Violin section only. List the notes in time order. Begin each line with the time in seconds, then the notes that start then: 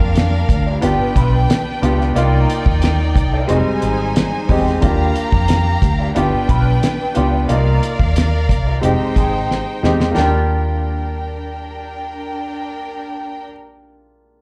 Already playing: D4 A#4 F5
0.83 D4 B4 G5
2.16 D#4 D5 G5
3.48 D#4 C5 G#5
4.82 G4 F5 A#5
6.16 D4 B4 G5
7.49 A#4 D5 F5
8.82 D#4 C5 G5
10.15 D4 A#4 G5